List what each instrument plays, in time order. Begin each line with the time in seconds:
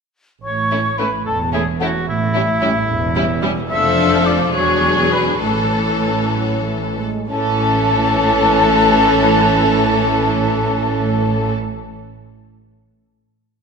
0.43 double bass section A1, cello section A2, oboe C#5, flute C#6
0.71 french horn section E3 C#4, viola section A3, violin section C#4 E4
0.98 french horn section E3 C#4, viola section A3, violin section C#4 E4, oboe B4, flute B5
1.26 double bass section E1, cello section E2, oboe A4, flute A5
1.52 french horn section E3 C#4, viola section A3, violin section C#4 E4, oboe G#4, flute G#5
1.80 french horn section E3 C#4, viola section A3, violin section C#4 E4, oboe F#4, flute F#5
2.07 double bass section A1, cello section A2, oboe E4, flute E5
2.34 french horn section G3 C#4, viola section G3, violin section C#4 E4
2.61 french horn section G3 C#4, viola section G3, violin section C#4 E4
2.89 double bass section E1, cello section E2
3.15 viola section G3, french horn section G3 C#4, violin section C#4 E4
3.42 viola section G3, french horn section G3 C#4, violin section C#4 E4
3.71 double bass section F1, cello section F2, viola section F3, violin section D4 A4, oboe E5, flute E6
3.98 french horn section F3 D4
4.26 french horn section F3 D4, oboe D5, flute D6
4.54 double bass section E1, cello section E2, viola section F#3, violin section D4 G#4, oboe C#5, flute C#6
4.84 french horn section F#3 D4
5.12 french horn section F#3 D4, oboe B4, flute B5
5.42 double bass section A1, cello section A2, viola section E3, violin section C#4 A4, oboe A4, flute A5
5.72 french horn section E3 C#4
6.02 french horn section E3 C#4
6.34 french horn section F#3
6.63 french horn section E3
6.96 french horn section G#3
7.28 double bass section A1, cello section A2, french horn section E3 C#4, viola section E3, violin section C#4 A4, oboe A4, flute A5